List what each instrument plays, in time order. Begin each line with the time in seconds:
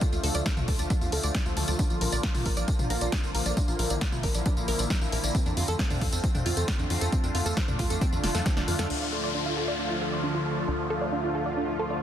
0.01 analog synth pad D3 F3 A3 F4, synth pluck D4, kick, closed hi-hat, tambourine
0.12 analog synth bass D2, synth pluck F4, tambourine
0.24 analog synth bass D2, analog synth pad D3 F3 A3 F4, synth pluck A4, open hi-hat
0.35 analog synth bass D2, synth pluck D5, closed hi-hat, tambourine
0.46 analog synth pad D3 F3 A3 F4, synth pluck D4, kick, snare, closed hi-hat, tambourine
0.57 analog synth bass D2, synth pluck F4, mid tom, tambourine
0.68 analog synth bass D2, analog synth pad D3 F3 A3 F4, synth pluck A4, kick, open hi-hat
0.79 analog synth bass D2, synth pluck D5, closed hi-hat, tambourine
0.90 analog synth pad D3 F3 A3 F4, synth pluck D4, kick, closed hi-hat, tambourine
1.01 analog synth bass E2, synth pluck F4, tambourine
1.12 analog synth bass D2, analog synth pad D3 F3 A3 F4, synth pluck A4, open hi-hat
1.23 analog synth bass D2, synth pluck D5, closed hi-hat, tambourine
1.35 analog synth pad D3 F3 A3 F4, synth pluck D4, kick, snare, closed hi-hat, tambourine
1.46 analog synth bass D2, synth pluck F4, tambourine
1.57 analog synth bass D2, analog synth pad D3 F3 A3 F4, synth pluck A4, open hi-hat
1.68 analog synth bass D2, synth pluck D5, closed hi-hat, tambourine
1.79 analog synth pad D3 F3 A#3 F4, synth pluck D4, kick, closed hi-hat, tambourine
1.90 analog synth bass A#1, synth pluck F4, tambourine
2.01 analog synth bass A#1, analog synth pad D3 F3 A#3 F4, synth pluck A#4, open hi-hat
2.12 analog synth bass A#1, synth pluck D5, closed hi-hat, tambourine
2.23 analog synth pad D3 F3 A#3 F4, synth pluck D4, kick, snare, closed hi-hat, tambourine
2.35 analog synth bass A#1, synth pluck F4, open hi-hat, mid tom, tambourine
2.46 analog synth bass A#1, analog synth pad D3 F3 A#3 F4, synth pluck A#4, kick, open hi-hat
2.57 analog synth bass A#1, synth pluck D5, closed hi-hat, tambourine
2.68 analog synth pad D3 F3 A#3 F4, synth pluck D4, kick, closed hi-hat, tambourine
2.79 analog synth bass A#1, synth pluck F4, mid tom, tambourine
2.90 analog synth bass A#1, analog synth pad D3 F3 A#3 F4, synth pluck A#4, open hi-hat
3.01 analog synth bass A#1, synth pluck D5, closed hi-hat, tambourine
3.12 analog synth pad D3 F3 A#3 F4, synth pluck D4, kick, snare, closed hi-hat, tambourine
3.24 analog synth bass A#1, synth pluck F4, tambourine
3.35 analog synth bass A#1, analog synth pad D3 F3 A#3 F4, synth pluck A#4, open hi-hat
3.46 analog synth bass A#1, synth pluck D5, closed hi-hat, tambourine
3.57 analog synth pad D3 F3 A#3 E4, synth pluck D4, kick, closed hi-hat, tambourine
3.68 analog synth bass A#1, synth pluck F4, tambourine
3.79 analog synth bass A#1, analog synth pad D3 F3 A#3 E4, synth pluck A#4, open hi-hat
3.90 analog synth bass A#1, synth pluck D5, closed hi-hat, tambourine
4.01 analog synth pad D3 F3 A#3 E4, synth pluck D4, kick, snare, closed hi-hat, tambourine
4.12 analog synth bass A#1, synth pluck F4, mid tom, tambourine
4.23 analog synth bass A#1, analog synth pad D3 F3 A#3 E4, synth pluck A#4, kick, open hi-hat
4.34 analog synth bass A#1, synth pluck D5, closed hi-hat, tambourine
4.46 analog synth pad D3 F3 A#3 E4, synth pluck D4, kick, closed hi-hat, tambourine
4.57 analog synth bass A#1, synth pluck F4, tambourine
4.68 analog synth bass A#1, analog synth pad D3 F3 A#3 E4, synth pluck A#4, open hi-hat
4.79 analog synth bass A#1, synth pluck D5, closed hi-hat, tambourine
4.90 analog synth pad D3 F3 A#3 E4, synth pluck D4, kick, snare, closed hi-hat, tambourine
5.01 analog synth bass A#1, synth pluck F4, tambourine
5.12 analog synth bass A#1, analog synth pad D3 F3 A#3 E4, synth pluck A#4, open hi-hat
5.24 analog synth bass A#1, synth pluck D5, closed hi-hat, tambourine
5.35 analog synth pad D3 A3 C4 F4, synth pluck C4, kick, closed hi-hat, tambourine
5.46 analog synth bass F2, synth pluck D4, tambourine
5.57 analog synth bass F2, analog synth pad D3 A3 C4 F4, synth pluck F4, open hi-hat
5.68 analog synth bass F2, synth pluck A4, closed hi-hat, tambourine
5.79 analog synth pad D3 A3 C4 F4, synth pluck C4, kick, snare, closed hi-hat, tambourine
5.90 analog synth bass F2, synth pluck D4, open hi-hat, mid tom, tambourine
6.01 analog synth bass F2, analog synth pad D3 A3 C4 F4, synth pluck F4, kick, open hi-hat
6.13 analog synth bass F2, synth pluck A4, closed hi-hat, tambourine
6.23 analog synth pad D3 A3 C4 F4, synth pluck C4, kick, closed hi-hat, tambourine
6.35 analog synth bass F2, synth pluck D4, mid tom, tambourine
6.46 analog synth bass F2, analog synth pad D3 A3 C4 F4, synth pluck F4, open hi-hat
6.57 analog synth bass F2, synth pluck A4, closed hi-hat, tambourine
6.68 analog synth pad D3 A3 C4 F4, synth pluck C4, kick, snare, closed hi-hat, tambourine
6.79 analog synth bass F2, synth pluck D4, tambourine
6.90 analog synth bass F2, analog synth pad D3 A3 C4 F4, synth pluck F4, open hi-hat
7.01 analog synth bass F2, synth pluck A4, closed hi-hat, tambourine
7.12 analog synth pad D3 A3 D4 F4, synth pluck C4, kick, closed hi-hat, tambourine
7.24 analog synth bass F2, synth pluck D4, tambourine
7.35 analog synth bass F2, analog synth pad D3 A3 D4 F4, synth pluck F4, open hi-hat
7.46 analog synth bass F2, synth pluck A4, closed hi-hat, tambourine
7.57 analog synth pad D3 A3 D4 F4, synth pluck C4, kick, snare, closed hi-hat
7.68 analog synth bass F2, synth pluck D4, mid tom, tambourine
7.79 analog synth bass F2, analog synth pad D3 A3 D4 F4, synth pluck F4, kick, open hi-hat
7.90 analog synth bass F2, synth pluck A4, closed hi-hat, tambourine
8.01 analog synth pad D3 A3 D4 F4, synth pluck C4, kick, closed hi-hat, tambourine
8.13 analog synth bass F2, synth pluck D4, tambourine
8.24 analog synth bass F1, analog synth pad D3 A3 D4 F4, synth pluck F4, snare, open hi-hat
8.35 analog synth bass F2, synth pluck A4, snare, closed hi-hat, tambourine
8.46 analog synth pad D3 A3 D4 F4, synth pluck C4, kick, snare, closed hi-hat, tambourine
8.57 analog synth bass F1, synth pluck D4, snare, tambourine
8.68 analog synth bass F2, analog synth pad D3 A3 D4 F4, synth pluck F4, open hi-hat
8.79 analog synth bass F2, synth pluck A4, snare, closed hi-hat, tambourine
8.90 analog synth bass D2, analog synth pad D3 F3 A3 F4, synth pluck D4, crash, downlifter
9.01 synth pluck F4
9.12 analog synth pad D3 F3 A3 F4, synth pluck A4
9.24 synth pluck D5
9.35 analog synth pad D3 F3 A3 F4, synth pluck D4
9.46 synth pluck F4
9.57 analog synth pad D3 F3 A3 F4, synth pluck A4
9.68 synth pluck D5
9.79 analog synth pad D3 F3 A3 F4, synth pluck D4
9.90 synth pluck F4
10.01 analog synth pad D3 F3 A3 F4, synth pluck A4
10.12 synth pluck D5
10.24 analog synth pad D3 F3 A3 F4, synth pluck D4
10.35 synth pluck F4
10.46 analog synth pad D3 F3 A3 F4, synth pluck A4
10.57 synth pluck D5
10.68 analog synth bass D2, analog synth pad D3 F3 A3 F4, synth pluck D4
10.79 synth pluck F4
10.90 analog synth pad D3 F3 A3 F4, synth pluck A4
11.01 synth pluck D5
11.12 analog synth pad D3 F3 A3 F4, synth pluck D4
11.24 synth pluck F4
11.35 analog synth pad D3 F3 A3 F4, synth pluck A4
11.46 synth pluck D5
11.57 analog synth pad D3 F3 A3 F4, synth pluck D4
11.68 synth pluck F4
11.79 analog synth pad D3 F3 A3 F4, synth pluck A4
11.90 synth pluck D5